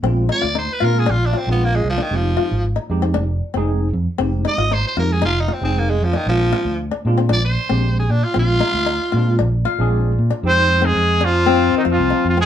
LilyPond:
<<
  \new Staff \with { instrumentName = "Trumpet" } { \time 4/4 \key f \dorian \tempo 4 = 116 r1 | r1 | r1 | r1 |
r1 | c''8. aes'8. f'4 ees'16 f'8. f'16 aes'16 | }
  \new Staff \with { instrumentName = "Tenor saxophone" } { \time 4/4 \key f \dorian r8 d''8 c''16 b'16 bes'16 aes'16 f'16 d'16 c'16 b16 bes16 aes16 f16 ees16 | f4 r2. | r8 ees''8 c''16 c''16 bes'16 aes'16 f'16 ees'16 c'16 c'16 bes16 aes16 f16 ees16 | f4 r4 d''16 c''4 aes'16 d'16 f'16 |
f'2 r2 | r1 | }
  \new Staff \with { instrumentName = "Kora" } { \time 4/4 \key f \dorian c'8 ees'16 f'16 ees'8 f'8 d'8 f'8 r8. d'16 | r8 f'8 r16 ees'8 c'16 d'8 r16 c'8 r8. | c'8 ees'16 f'16 ees'8 f'8 ees'8 f'8 r8. d'16 | r8 f'8 r16 d'8 c'16 d'8 r16 c'8 r8. |
c'8 ees'16 r16 ees'8 f'8 d'8 f'8 r8. d'16 | r8. c'8 r16 d'8 c'8 r16 f'8 ees'8 c'16 | }
  \new Staff \with { instrumentName = "Tine electric piano" } { \time 4/4 \key f \dorian << { r1 | r1 | r1 | r1 |
r2 r8 f''8 d''4 | r1 | } \\ { <aes c' d' f'>8. r8. <aes c' d' f'>8 r8. <aes c' d' f'>8 r8. | <aes c' ees' g'>8. r8. <aes c' ees' g'>8 r8. <aes c' ees' aes'>8 r8. | <aes c' ees' g'>8. r8. <aes c' ees' g'>8 r8. <aes c' ees' aes'>8 r8. | <aes c' d' f'>8. r8. <aes c' d' f'>8 r8. <aes c' d' g'>8 r8. |
<aes c' d' f'>8. r8. <aes c' d' f'>8 r8. <aes c' d' aes'>8 r8. | <aes c' ees' g'>4 r2. | } >> }
  \new Staff \with { instrumentName = "Alto saxophone" } { \clef bass \time 4/4 \key f \dorian r1 | r1 | r1 | r1 |
r1 | c'8. aes8. f4 ees16 f8. f16 aes16 | }
  \new Staff \with { instrumentName = "Fingered electric bass" } { \clef bass \time 4/4 \key f \dorian bes,,8 r16 d,8 r16 bes,8 bes,,8 r16 bes,,8. c,16 r16 | f,,8 r16 aes,,8 r16 f,8 f,,8 r16 f,,8. f,16 r16 | f,,8 r16 aes,,8 r16 f,8 f,,8 r16 f,,8. f,16 r16 | bes,,8 r16 d,8 r16 bes,8 bes,,8 r16 bes,,8. bes,16 r16 |
bes,,8 r16 d,8 r16 bes,8 bes,,8 r16 bes,,8. bes,16 r16 | f,4 f,4. r16 f,16 c,16 r16 f,8 | }
>>